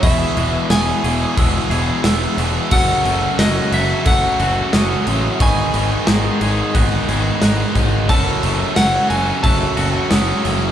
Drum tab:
CC |xxxxxxxx|xxxxxxxx|xxxxxxxx|xxxxxxxx|
SD |--o---oo|--o---oo|--o---oo|--o---oo|
BD |o---o---|o---o---|o---o--o|o---o---|